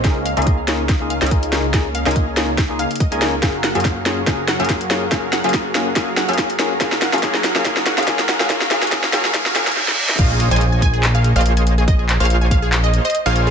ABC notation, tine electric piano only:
X:1
M:4/4
L:1/16
Q:"Swing 16ths" 1/4=142
K:Bbm
V:1 name="Tine electric piano"
[B,EFA] z2 [B,EFA]2 z [B,EFA] z2 [B,EFA] z2 [B,EFA]2 [B,EFA] z | [B,EFA] z2 [B,EFA]2 z [B,EFA] z2 [B,EFA] z3 [B,EFA] [B,EFA] z | [B,DFA] z2 [B,DFA]2 z [B,DFA] z [B,DFA] z2 [B,DFA]2 z [B,DFA] z | [B,DFA] z2 [B,DFA]2 z [B,DFA] z [B,DFA] z2 [B,DFA]2 z [B,DFA] z |
[B,DFA] z2 [B,DFA] [B,DFA] z2 [B,DFA] [B,DFA] z2 [B,DFA] [B,DFA] z2 [B,DFA] | [B,DFA] z [B,DFA] z [B,DFA] z [B,DFA] z [B,DFA] z [B,DFA] z4 z | z16 | z16 |]